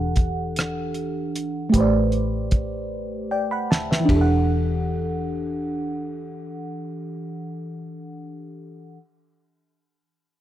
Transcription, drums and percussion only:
0.16 kick medium
0.16 closed hi-hat soft
0.56 cross-stick medium
0.56 closed hi-hat medium
0.94 closed hi-hat soft
1.35 closed hi-hat soft
1.74 kick medium
1.74 closed hi-hat medium
2.12 closed hi-hat soft
2.51 kick medium
2.51 closed hi-hat soft
3.72 snare medium
3.92 snare medium
4.09 kick medium
4.09 ride medium

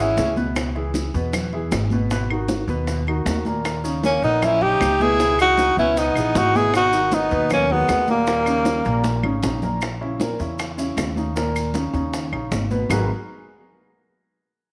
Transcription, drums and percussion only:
0.17 high bongo medium
0.17 low bongo medium
0.17 high conga medium
0.17 maracas medium
0.36 high bongo soft
0.36 high conga medium
0.36 maracas soft
0.56 high bongo medium
0.56 high conga soft
0.56 claves medium
0.56 maracas medium
0.75 high bongo soft
0.75 high conga soft
0.94 high bongo medium
0.94 high conga medium
0.94 maracas medium
1.14 high conga soft
1.14 maracas soft
1.33 high bongo medium
1.33 high conga soft
1.33 low conga medium
1.33 claves medium
1.33 maracas medium
1.52 high bongo soft
1.52 high conga soft
1.71 high bongo medium
1.71 low bongo medium
1.71 high conga medium
1.71 claves medium
1.71 maracas medium
1.90 high bongo soft
1.90 high conga medium
1.90 maracas soft
2.10 high bongo medium
2.10 maracas medium
2.29 high conga soft
2.29 claves medium
2.48 high bongo medium
2.48 high conga loud
2.48 maracas medium
2.68 high bongo soft
2.68 maracas soft
2.87 high bongo medium
2.87 high conga soft
2.87 maracas medium
3.07 high bongo soft
3.07 high conga soft
3.07 claves medium
3.26 high bongo medium
3.26 low bongo medium
3.26 high conga medium
3.26 maracas medium
3.45 high bongo soft
3.45 high conga medium
3.45 maracas soft
3.65 high bongo medium
3.65 high conga soft
3.65 claves medium
3.65 maracas medium
3.84 high bongo soft
3.84 high conga soft
3.84 maracas medium
4.03 high bongo medium
4.03 high conga medium
4.03 maracas medium
4.23 maracas soft
4.42 high bongo medium
4.42 high conga soft
4.42 low conga medium
4.42 claves medium
4.42 maracas medium
4.61 high bongo soft
4.61 high conga soft
4.61 low conga medium
4.81 high bongo medium
4.81 low bongo medium
4.81 high conga medium
4.81 claves medium
4.81 maracas medium
5.00 high bongo soft
5.00 high conga medium
5.00 maracas soft
5.20 high bongo medium
5.20 high conga soft
5.20 maracas medium
5.38 high conga soft
5.38 claves medium
5.38 maracas medium
5.58 high bongo medium
5.58 high conga loud
5.58 maracas medium
5.78 high bongo soft
5.78 maracas soft
5.97 high bongo medium
5.97 high conga soft
5.97 maracas medium
6.16 high bongo soft
6.16 high conga soft
6.16 claves medium
6.16 maracas medium
6.35 high bongo medium
6.35 low bongo medium
6.35 high conga medium
6.35 maracas medium
6.55 high bongo soft
6.55 high conga medium
6.55 maracas soft
6.74 high bongo medium
6.74 claves medium
6.74 maracas medium
6.93 high bongo soft
6.93 high conga soft
6.93 maracas medium
7.12 high bongo medium
7.12 high conga loud
7.12 maracas medium
7.31 high conga soft
7.31 maracas soft
7.50 high bongo medium
7.50 high conga soft
7.50 low conga medium
7.50 claves medium
7.50 maracas medium
7.70 high bongo soft
7.70 high conga soft
7.70 low conga medium
7.89 high bongo medium
7.89 low bongo medium
7.89 high conga medium
7.89 claves medium
7.89 maracas medium
8.07 high bongo soft
8.07 high conga medium
8.07 maracas soft
8.27 high bongo medium
8.27 maracas medium
8.46 high conga soft
8.46 claves medium
8.46 maracas medium
8.65 high bongo medium
8.65 high conga medium
8.65 maracas medium
8.85 high bongo soft
8.85 maracas soft
9.04 high bongo medium
9.04 high conga loud
9.04 maracas medium
9.23 high bongo soft
9.23 high conga medium
9.23 claves medium
9.43 high bongo medium
9.43 low bongo medium
9.43 low conga medium
9.43 maracas medium
9.62 high bongo soft
9.62 low conga medium
9.62 maracas soft
9.81 high bongo medium
9.81 high conga soft
9.81 claves medium
9.81 maracas medium
10.01 high bongo soft
10.01 high conga soft
10.20 high bongo medium
10.20 high conga medium
10.20 maracas medium
10.39 high conga soft
10.39 maracas soft
10.58 high bongo medium
10.58 high conga soft
10.58 claves medium
10.58 maracas medium
10.78 high bongo soft
10.78 high conga soft
10.78 maracas medium
10.97 high bongo medium
10.97 low bongo medium
10.97 high conga medium
10.97 claves medium
10.97 maracas medium
11.16 high bongo soft
11.16 high conga medium
11.16 maracas soft
11.36 high bongo medium
11.36 high conga soft
11.36 maracas medium
11.55 high conga soft
11.55 claves medium
11.55 maracas medium
11.74 high bongo medium
11.74 high conga medium
11.74 maracas medium
11.94 high bongo soft
11.94 high conga soft
11.94 maracas soft
12.13 high bongo medium
12.13 high conga soft
12.13 maracas medium
12.32 high bongo soft
12.32 high conga soft
12.32 claves medium
12.52 high bongo medium
12.52 low bongo medium
12.52 high conga medium
12.52 maracas medium
12.71 high bongo soft
12.71 high conga medium
12.71 maracas soft
12.90 low bongo loud
12.90 low conga medium
12.90 claves medium
12.90 maracas medium

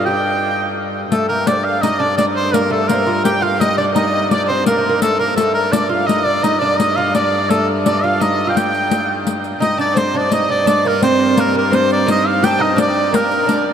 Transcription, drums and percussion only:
1.12 riq medium
1.47 riq medium
1.83 riq medium
2.18 riq medium
2.54 riq medium
2.89 riq medium
3.25 riq medium
3.61 riq medium
3.96 riq medium
4.31 riq medium
4.66 riq medium
5.02 riq medium
5.38 riq medium
5.73 riq medium
6.09 riq medium
6.44 riq medium
6.80 riq medium
7.15 riq medium
7.50 riq medium
7.86 riq medium
8.21 riq medium
8.57 riq medium
8.74 riq soft
8.91 riq medium
9.27 riq medium
9.44 riq soft
9.62 riq medium
9.79 riq soft
9.97 riq medium
10.32 riq medium
10.67 riq medium
10.85 riq soft
11.02 riq medium
11.37 riq medium
11.73 riq medium
11.90 riq soft
12.08 riq medium
12.44 riq medium
12.78 riq medium
13.14 riq medium
13.32 riq soft
13.49 riq medium

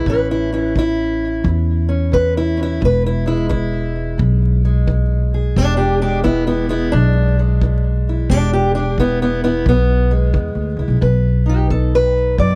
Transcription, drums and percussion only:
0.06 kick medium
0.76 kick medium
1.45 kick medium
2.13 kick medium
2.82 kick medium
3.51 kick medium
4.19 kick medium
4.88 kick medium
5.56 kick medium
6.25 kick medium
6.93 kick medium
7.61 kick medium
8.30 kick medium
8.98 kick medium
9.66 kick medium
10.34 kick medium
11.02 kick medium
11.70 kick medium
12.38 kick medium

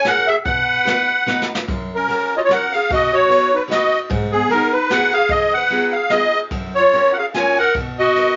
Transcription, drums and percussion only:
0.05 snare medium
0.05 closed hi-hat medium
0.46 kick loud
0.46 closed hi-hat medium
0.87 snare medium
0.87 closed hi-hat medium
1.28 snare soft
1.42 snare medium
1.55 snare medium
1.68 kick medium
1.68 ride medium
2.10 ride medium
2.51 snare medium
2.51 ride soft
2.74 ride medium
2.91 kick loud
2.91 ride medium
3.31 ride medium
3.71 snare medium
3.71 ride medium
4.11 kick loud
4.11 ride medium
4.51 ride medium
4.90 snare medium
4.90 ride soft
5.11 ride soft
5.28 kick loud
5.28 ride medium
5.70 ride soft
6.10 snare medium
6.10 ride soft
6.51 kick medium
6.51 ride soft
6.93 ride medium
7.34 snare medium
7.34 ride soft
7.56 ride soft
7.75 kick medium
7.75 ride medium
8.16 ride medium

